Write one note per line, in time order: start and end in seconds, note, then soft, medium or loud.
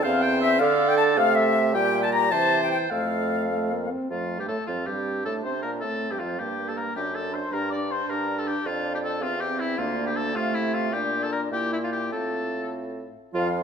0.03 0.59 E2 loud
0.03 0.62 C4 loud
0.03 0.62 C5 loud
0.03 0.23 F5 loud
0.03 0.24 F5 loud
0.21 0.41 G5 loud
0.41 0.50 E5 loud
0.41 0.61 E5 loud
0.59 1.19 D3 loud
0.59 1.16 D4 loud
0.59 1.46 A4 loud
0.59 0.88 F5 loud
0.59 0.90 F5 loud
0.88 0.99 G5 loud
0.88 0.97 G5 loud
0.97 1.19 A5 loud
0.97 1.03 A5 loud
1.17 1.75 C3 loud
1.17 1.76 A3 medium
1.17 1.36 F5 loud
1.17 1.37 F5 loud
1.35 1.74 E5 loud
1.74 2.33 A#2 loud
1.74 2.34 G3 medium
1.74 2.28 G4 loud
1.74 2.02 G5 loud
1.74 2.06 G5 loud
2.03 2.11 A5 medium
2.03 2.13 A5 loud
2.12 2.21 A#5 loud
2.12 2.33 A#5 loud
2.30 2.75 C3 medium
2.30 2.91 E3 medium
2.30 2.91 C5 loud
2.30 2.63 A5 loud
2.30 2.62 A5 loud
2.61 2.71 G5 medium
2.61 2.71 G5 loud
2.71 2.91 G5 medium
2.71 2.78 G5 loud
2.90 3.89 F2 medium
2.90 3.46 A3 medium
2.90 3.79 A4 medium
2.90 3.90 F5 medium
2.90 3.89 F5 loud
3.51 3.72 A3 medium
3.71 3.92 A#3 medium
3.90 4.10 C4 medium
4.10 4.40 F2 medium
4.10 4.41 F3 medium
4.10 4.70 A3 medium
4.10 4.37 F4 medium
4.10 4.42 F5 soft
4.39 4.48 G2 soft
4.39 4.48 G3 soft
4.39 4.44 G4 medium
4.39 4.49 G5 soft
4.48 4.57 A2 medium
4.48 4.57 A3 medium
4.48 4.66 A4 medium
4.48 4.68 A5 soft
4.67 4.86 F2 medium
4.67 4.77 F3 medium
4.67 5.27 C4 soft
4.67 4.88 F4 medium
4.67 4.75 F5 medium
4.86 5.25 G2 medium
4.86 5.25 G3 medium
4.86 5.25 G4 medium
4.86 5.25 G5 soft
5.25 5.46 A2 medium
5.25 5.45 A3 medium
5.25 5.84 D4 medium
5.25 5.34 A4 medium
5.25 5.45 A5 medium
5.44 5.65 C3 medium
5.44 5.53 C4 medium
5.44 5.62 C5 medium
5.44 5.64 C6 medium
5.62 5.84 A#2 medium
5.62 5.72 A#3 medium
5.62 5.71 A#4 medium
5.62 5.86 A#5 medium
5.80 6.13 A2 medium
5.80 6.11 A3 medium
5.80 6.40 C4 medium
5.80 6.13 A4 medium
5.85 6.12 A5 medium
6.11 6.22 G2 medium
6.11 6.19 G3 soft
6.11 6.20 G4 medium
6.11 6.23 G5 soft
6.19 6.40 F2 medium
6.19 6.39 F3 medium
6.19 6.40 F4 medium
6.19 6.41 F5 medium
6.39 6.90 G2 medium
6.39 6.48 A#3 soft
6.39 6.96 A#3 medium
6.39 6.70 G4 medium
6.39 6.70 G5 medium
6.59 6.68 A#3 soft
6.69 6.78 A4 medium
6.69 6.76 A5 medium
6.76 6.86 A#3 soft
6.76 6.95 A#4 medium
6.76 6.82 A#5 medium
6.95 7.46 F#2 medium
6.95 7.05 D4 soft
6.95 9.22 D4 medium
6.95 7.17 G4 medium
6.95 7.01 G5 medium
7.13 7.24 D4 soft
7.13 7.35 A4 medium
7.13 7.34 A5 medium
7.33 7.42 D4 soft
7.33 7.55 C5 medium
7.33 7.53 C6 medium
7.51 8.02 G2 medium
7.51 7.61 D4 medium
7.51 7.71 A#4 medium
7.51 7.69 A#5 medium
7.70 7.80 D4 medium
7.70 7.93 D5 medium
7.70 7.76 D6 medium
7.90 7.99 D4 medium
7.90 8.11 C5 medium
7.90 8.09 C6 medium
8.09 8.59 G2 medium
8.09 8.18 D4 soft
8.09 8.40 A#4 medium
8.09 8.39 A#5 medium
8.27 8.36 D4 medium
8.38 8.49 A4 medium
8.38 8.50 A5 medium
8.46 8.55 D4 medium
8.46 8.68 G4 medium
8.46 8.67 G5 medium
8.65 9.23 F2 medium
8.65 9.23 D4 medium
8.65 8.94 F4 medium
8.65 8.92 F5 medium
8.93 8.99 G4 medium
8.93 8.97 G5 medium
9.01 9.24 A4 medium
9.01 9.22 A5 medium
9.20 9.78 E2 medium
9.20 9.78 C4 medium
9.20 9.42 F4 loud
9.20 9.40 F5 medium
9.40 9.61 G4 medium
9.40 9.58 G5 medium
9.59 9.80 E4 medium
9.59 9.79 E5 medium
9.77 10.34 D2 medium
9.77 10.36 A#3 medium
9.77 10.36 D4 medium
9.77 10.06 F4 medium
9.77 10.07 F5 medium
10.05 10.18 G4 medium
10.05 10.14 G5 medium
10.14 10.37 A4 medium
10.14 10.35 A5 medium
10.34 10.94 C3 medium
10.34 10.92 A3 medium
10.34 11.23 A3 medium
10.34 10.56 F4 loud
10.34 10.53 F5 medium
10.53 10.75 E4 medium
10.53 10.59 E5 medium
10.74 10.94 F4 medium
10.74 10.91 F5 medium
10.92 11.51 A#2 medium
10.92 11.53 D4 medium
10.92 11.24 G4 medium
10.92 10.99 G5 medium
11.23 11.31 A4 medium
11.23 11.34 A5 medium
11.32 11.41 A#4 medium
11.32 11.52 A#5 medium
11.51 12.14 A#2 medium
11.51 12.08 A#3 medium
11.51 12.14 E4 medium
11.51 11.72 G4 medium
11.51 11.59 G5 medium
11.72 11.77 E4 medium
11.72 11.76 E5 medium
11.83 11.88 F4 medium
11.83 11.95 F5 medium
11.92 12.11 G4 medium
11.92 12.14 G5 medium
12.12 13.14 A2 medium
12.12 13.02 C4 medium
12.12 13.14 F4 medium
12.12 12.72 A4 medium
12.12 12.73 A5 medium
13.34 13.63 F2 medium
13.34 13.61 F3 medium
13.34 13.63 F4 medium
13.34 13.48 F4 medium
13.34 13.63 F5 medium